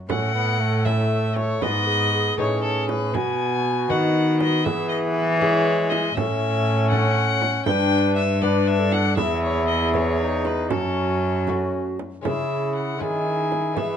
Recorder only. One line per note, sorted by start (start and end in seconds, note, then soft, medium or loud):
0.09 1.63 A4 medium
1.62 1.88 B4 medium
1.87 2.12 G#4 medium
2.13 3.17 G#4 medium
3.15 4.65 F#4 medium
4.65 5.39 G#4 medium
5.42 6.15 G#4 medium
6.17 7.40 A4 medium
7.67 8.41 B4 medium
8.43 8.81 B4 medium
8.79 9.17 A4 medium
9.15 10.71 G#4 medium
10.69 11.98 F#4 medium
12.25 12.97 G#4 medium
13.01 13.75 G#4 medium
13.76 13.97 G#4 soft